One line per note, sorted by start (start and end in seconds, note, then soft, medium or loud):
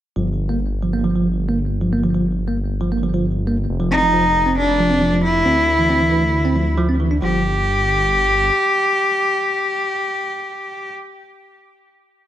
0.16 3.67 G1 medium
0.16 0.27 F3 medium
0.49 0.58 A#3 medium
0.82 0.91 F3 medium
0.93 1.04 A#3 medium
1.04 1.13 F3 medium
1.15 1.26 F3 medium
1.49 1.58 A#3 medium
1.82 1.91 F3 medium
1.93 2.03 A#3 medium
2.04 2.13 F3 medium
2.15 2.25 F3 medium
2.48 2.57 A#3 medium
2.81 2.90 F3 medium
2.92 3.02 A#3 medium
3.03 3.12 F3 medium
3.14 3.24 F3 medium
3.47 3.56 A#3 medium
3.69 5.43 F1 medium
3.80 3.89 F3 medium
3.91 4.02 C4 medium
3.91 4.53 D#4 loud
4.02 4.11 F3 medium
4.13 4.24 F3 medium
4.46 4.55 C4 medium
4.58 5.20 D4 loud
4.79 4.88 F3 medium
4.90 5.01 C4 medium
5.01 5.10 F3 medium
5.12 5.23 F3 medium
5.24 6.74 E4 loud
5.45 7.20 D2 medium
5.45 5.55 C4 medium
5.79 5.88 E3 medium
5.90 6.00 C4 medium
6.01 6.10 E3 medium
6.12 6.22 E3 medium
6.45 6.54 C4 medium
6.56 6.65 F3 medium
6.78 6.87 F3 loud
6.89 6.94 C4 medium
7.00 7.10 E3 medium
7.11 7.16 D4 medium
7.22 8.50 G1 loud
7.22 7.42 F3 medium
7.22 10.92 G4 loud